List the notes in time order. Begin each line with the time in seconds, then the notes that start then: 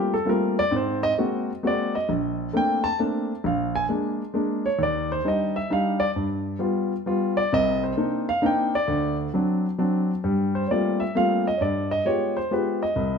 Already playing: G3 A3 A#3 C4 F4 G4
0.14 A4
0.25 G3 A3 A#3 C4 F4
0.29 A#4
0.59 D5
0.71 G#2 C4
0.76 C5
1.03 D#5
1.18 G#3 A#3 C4 F#4
1.63 G#3 A#3 C4 F#4
1.67 D5
1.95 D#5
2.09 A#1
2.53 A3 A#3 C4 D4 G5
2.84 A5
2.99 A3 A#3 C4 D4
3.44 A#1 F5
3.76 G#5
3.89 G#3 A#3 D4
4.34 G#3 A#3 D4
4.66 C#5
4.79 D#2
4.83 D5
5.12 C5
5.24 G3 D4 D#4 D#5
5.56 E5
5.70 G3 D4 D#4 F5
6.00 D5
6.16 G2
6.59 G3 B3 F4
7.06 G3 B3 F4
7.37 D5
7.53 C2 C3 D#5
7.84 C5
7.97 A#3 C4 D4 D#4
8.29 F5
8.42 A#3 C4 D4 D#4
8.46 G5
8.75 D5
8.88 D2
9.34 F#3 C4 D4
9.79 F#3 C4 D4
10.24 G2 G3
10.55 C5
10.67 G3 A#3 C#5 D5
10.71 A3 C4 F4
11.00 E5
11.15 G3 A3 A#3 C4 F4 F5
11.47 D#5
11.57 G2 C#5
11.62 D5
11.91 D#5
12.05 G#3 B3 F4 G4 C#5
12.37 C5
12.51 G#3 B3 F4 G4 B4
12.83 D#5
12.96 C2